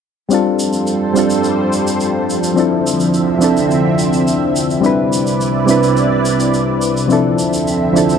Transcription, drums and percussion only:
0.31 shaker soft
0.59 shaker medium
0.73 shaker medium
0.87 shaker soft
1.16 shaker medium
1.30 shaker medium
1.44 shaker soft
1.73 shaker medium
1.87 shaker medium
2.00 shaker soft
2.30 shaker medium
2.43 shaker soft
2.57 shaker soft
2.87 shaker medium
3.00 shaker medium
3.14 shaker soft
3.41 shaker medium
3.57 shaker medium
3.71 shaker soft
3.99 shaker medium
4.13 shaker medium
4.27 shaker medium
4.56 shaker medium
4.70 shaker medium
4.84 shaker soft
5.13 shaker medium
5.27 shaker medium
5.41 shaker soft
5.68 shaker medium
5.83 shaker medium
5.97 shaker soft
6.25 shaker medium
6.40 shaker medium
6.54 shaker soft
6.82 shaker medium
6.97 shaker medium
7.10 shaker soft
7.39 shaker medium
7.53 shaker medium
7.67 shaker soft
7.96 shaker medium
8.09 shaker medium

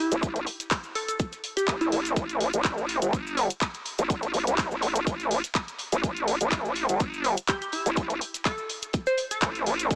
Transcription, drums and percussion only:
0.12 closed hi-hat medium
0.12 cabasa medium
0.23 kick loud
0.23 closed hi-hat medium
0.23 cabasa medium
0.36 closed hi-hat medium
0.36 closed hi-hat soft
0.36 cabasa soft
0.46 closed hi-hat medium
0.46 open hi-hat loud
0.60 snare soft
0.60 closed hi-hat medium
0.60 cabasa medium
0.71 kick loud
0.71 snare loud
0.71 clap loud
0.71 closed hi-hat medium
0.71 open hi-hat medium
0.71 cabasa medium
0.83 cabasa soft
0.95 closed hi-hat medium
0.95 open hi-hat loud
1.08 closed hi-hat medium
1.08 cabasa medium
1.19 kick loud
1.19 closed hi-hat medium
1.19 cabasa medium
1.33 snare soft
1.33 closed hi-hat soft
1.33 cabasa soft
1.44 closed hi-hat medium
1.44 open hi-hat loud
1.56 snare soft
1.56 closed hi-hat medium
1.56 cabasa medium
1.68 kick loud
1.68 snare loud
1.68 clap loud
1.68 closed hi-hat medium
1.68 cabasa medium
1.81 closed hi-hat medium
1.81 cabasa soft
1.92 closed hi-hat medium
1.92 open hi-hat loud
2.05 closed hi-hat medium
2.05 cabasa medium
2.16 kick loud
2.16 closed hi-hat medium
2.16 cabasa medium
2.29 closed hi-hat soft
2.29 cabasa soft
2.41 snare soft
2.41 closed hi-hat medium
2.41 open hi-hat loud
2.53 closed hi-hat medium
2.53 cabasa medium
2.65 kick loud
2.65 snare loud
2.65 clap loud
2.65 closed hi-hat medium
2.65 cabasa medium
2.78 cabasa soft
2.89 closed hi-hat medium
2.89 open hi-hat loud
3.02 closed hi-hat medium
3.02 cabasa medium
3.13 kick loud
3.13 closed hi-hat medium
3.13 cabasa medium
3.27 cabasa soft
3.37 closed hi-hat medium
3.37 open hi-hat loud
3.50 closed hi-hat medium
3.50 cabasa medium
3.61 kick loud
3.61 snare loud
3.61 clap loud
3.61 closed hi-hat medium
3.61 cabasa medium
3.74 closed hi-hat soft
3.74 cabasa soft
3.85 closed hi-hat medium
3.85 open hi-hat loud
3.98 closed hi-hat medium
3.98 cabasa medium
4.10 kick loud
4.10 closed hi-hat medium
4.10 cabasa medium
4.23 closed hi-hat soft
4.23 cabasa soft
4.34 closed hi-hat medium
4.34 open hi-hat loud
4.47 snare soft
4.47 closed hi-hat medium
4.47 cabasa medium
4.58 kick loud
4.58 snare loud
4.58 clap loud
4.58 closed hi-hat medium
4.58 open hi-hat medium
4.58 cabasa medium
4.71 cabasa soft
4.82 closed hi-hat medium
4.82 open hi-hat loud
4.96 closed hi-hat medium
4.96 cabasa medium
5.07 kick loud
5.07 closed hi-hat medium
5.07 cabasa medium
5.20 snare soft
5.20 closed hi-hat soft
5.20 cabasa soft
5.31 closed hi-hat medium
5.31 open hi-hat loud
5.44 snare medium
5.44 closed hi-hat medium
5.44 cabasa medium
5.55 kick loud
5.55 snare loud
5.55 clap loud
5.55 closed hi-hat medium
5.55 cabasa medium
5.68 closed hi-hat soft
5.68 cabasa soft
5.79 closed hi-hat medium
5.79 open hi-hat loud
5.92 closed hi-hat medium
5.92 cabasa medium
6.04 kick loud
6.04 closed hi-hat medium
6.04 cabasa medium
6.17 closed hi-hat soft
6.17 cabasa soft
6.27 snare soft
6.27 closed hi-hat medium
6.27 open hi-hat loud
6.41 closed hi-hat medium
6.41 cabasa medium
6.51 kick loud
6.51 snare loud
6.51 clap loud
6.51 closed hi-hat medium
6.51 cabasa medium
6.65 cabasa soft
6.75 closed hi-hat medium
6.75 open hi-hat loud
6.89 closed hi-hat medium
6.89 cabasa medium
7.00 kick loud
7.00 closed hi-hat medium
7.00 cabasa medium
7.14 cabasa soft
7.24 closed hi-hat medium
7.24 open hi-hat loud
7.37 closed hi-hat medium
7.37 cabasa medium
7.48 kick loud
7.48 snare loud
7.48 clap loud
7.48 closed hi-hat medium
7.48 cabasa medium
7.62 closed hi-hat soft
7.62 cabasa soft
7.72 closed hi-hat medium
7.72 open hi-hat loud
7.86 closed hi-hat medium
7.86 cabasa medium
7.96 kick loud
7.96 closed hi-hat medium
7.96 cabasa medium
8.10 closed hi-hat soft
8.10 closed hi-hat medium
8.10 cabasa soft
8.21 closed hi-hat medium
8.21 open hi-hat loud
8.34 snare medium
8.34 closed hi-hat medium
8.34 cabasa medium
8.45 kick loud
8.45 snare loud
8.45 clap loud
8.45 closed hi-hat medium
8.45 open hi-hat medium
8.45 cabasa medium
8.58 cabasa soft
8.69 closed hi-hat medium
8.69 open hi-hat loud
8.82 closed hi-hat medium
8.82 cabasa medium
8.93 kick loud
8.93 closed hi-hat medium
8.93 cabasa medium
9.06 snare soft
9.06 closed hi-hat soft
9.06 cabasa soft
9.18 closed hi-hat medium
9.18 open hi-hat loud
9.31 snare medium
9.31 closed hi-hat medium
9.31 cabasa medium
9.41 kick loud
9.41 snare loud
9.41 clap loud
9.41 closed hi-hat medium
9.41 cabasa medium
9.55 closed hi-hat medium
9.55 cabasa soft
9.66 closed hi-hat medium
9.66 open hi-hat loud
9.79 closed hi-hat medium
9.79 cabasa medium
9.90 kick loud
9.90 closed hi-hat medium
9.90 cabasa medium

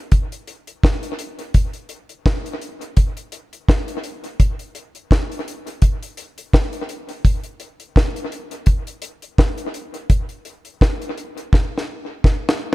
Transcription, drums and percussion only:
0.12 kick loud
0.12 closed hi-hat medium
0.32 closed hi-hat medium
0.47 closed hi-hat medium
0.67 closed hi-hat medium
0.84 kick loud
0.84 snare loud
1.03 closed hi-hat medium
1.19 closed hi-hat medium
1.39 closed hi-hat soft
1.54 kick loud
1.54 closed hi-hat loud
1.73 closed hi-hat medium
1.89 closed hi-hat medium
2.09 closed hi-hat medium
2.26 kick loud
2.26 snare loud
2.46 closed hi-hat medium
2.61 closed hi-hat medium
2.81 closed hi-hat medium
2.97 kick loud
2.97 closed hi-hat loud
3.17 closed hi-hat medium
3.32 closed hi-hat medium
3.53 closed hi-hat medium
3.69 kick loud
3.69 snare loud
3.88 closed hi-hat medium
4.04 closed hi-hat medium
4.24 closed hi-hat soft
4.40 kick loud
4.40 closed hi-hat loud
4.59 closed hi-hat medium
4.75 closed hi-hat medium
4.95 closed hi-hat medium
5.11 kick loud
5.11 snare loud
5.32 closed hi-hat medium
5.48 closed hi-hat medium
5.67 closed hi-hat soft
5.82 kick loud
5.82 closed hi-hat loud
6.03 closed hi-hat medium
6.17 closed hi-hat medium
6.38 closed hi-hat medium
6.53 kick loud
6.53 snare loud
6.73 closed hi-hat medium
6.89 closed hi-hat medium
7.09 closed hi-hat soft
7.25 kick loud
7.25 closed hi-hat loud
7.44 closed hi-hat medium
7.60 closed hi-hat medium
7.80 closed hi-hat medium
7.96 kick loud
7.96 snare loud
8.16 closed hi-hat medium
8.32 closed hi-hat medium
8.51 closed hi-hat medium
8.66 kick loud
8.66 closed hi-hat loud
8.87 closed hi-hat medium
9.02 closed hi-hat medium
9.22 closed hi-hat medium
9.38 kick loud
9.38 snare loud
9.58 closed hi-hat medium
9.74 closed hi-hat medium
9.94 closed hi-hat soft
10.10 kick loud
10.10 closed hi-hat loud
10.29 closed hi-hat soft
10.45 closed hi-hat medium
10.65 closed hi-hat medium
10.81 kick loud
10.81 snare loud
11.02 closed hi-hat medium
11.18 closed hi-hat medium
11.38 closed hi-hat medium
11.53 kick loud
11.53 snare medium
11.78 snare medium
12.24 kick loud
12.24 snare medium
12.49 snare loud

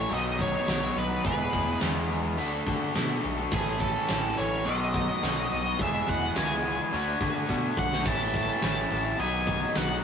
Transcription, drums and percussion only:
0.11 closed hi-hat loud
0.39 kick medium
0.39 closed hi-hat medium
0.53 closed hi-hat soft
0.68 snare loud
0.68 closed hi-hat loud
0.68 tambourine medium
0.82 closed hi-hat soft
0.96 closed hi-hat medium
1.25 kick loud
1.25 closed hi-hat loud
1.53 kick medium
1.53 closed hi-hat medium
1.67 closed hi-hat soft
1.81 snare loud
1.81 closed hi-hat loud
1.81 tambourine medium
2.10 closed hi-hat medium
2.38 closed hi-hat loud
2.66 kick loud
2.66 closed hi-hat medium
2.81 closed hi-hat soft
2.95 snare loud
2.95 closed hi-hat loud
2.95 tambourine medium
3.24 closed hi-hat medium
3.51 kick loud
3.51 closed hi-hat loud
3.80 kick medium
3.80 closed hi-hat medium
3.95 snare soft
4.08 snare loud
4.08 closed hi-hat loud
4.08 tambourine medium
4.36 closed hi-hat medium
4.65 closed hi-hat loud
4.94 kick medium
4.94 closed hi-hat medium
5.08 closed hi-hat soft
5.23 snare loud
5.23 closed hi-hat loud
5.23 tambourine medium
5.37 closed hi-hat medium
5.51 closed hi-hat medium
5.79 kick loud
5.79 closed hi-hat loud
6.08 kick medium
6.08 closed hi-hat medium
6.22 snare soft
6.22 closed hi-hat medium
6.36 snare loud
6.36 closed hi-hat loud
6.36 tambourine medium
6.64 closed hi-hat medium
6.93 closed hi-hat loud
7.21 kick loud
7.21 closed hi-hat medium
7.35 closed hi-hat soft
7.49 kick medium
7.49 tambourine medium
7.77 kick loud
7.92 snare loud
8.06 kick loud
8.06 crash loud
8.06 splash medium
8.34 kick medium
8.34 closed hi-hat medium
8.62 snare loud
8.62 closed hi-hat loud
8.62 tambourine loud
8.90 closed hi-hat medium
9.19 closed hi-hat loud
9.47 kick loud
9.47 closed hi-hat medium
9.61 closed hi-hat soft
9.75 snare loud
9.75 closed hi-hat loud
9.75 tambourine medium
9.89 closed hi-hat soft

